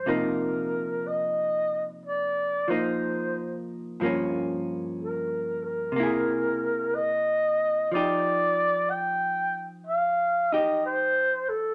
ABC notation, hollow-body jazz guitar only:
X:1
M:4/4
L:1/8
Q:"Swing" 1/4=61
K:Cm
V:1 name="Hollow-body jazz guitar"
[C,F,B,E]4- [C,F,B,E] [F,B,E]3 | [G,,F,B,_D]4 [C,B,=E^G]4 | [F,EG]4- [F,EG] [EG]3 |]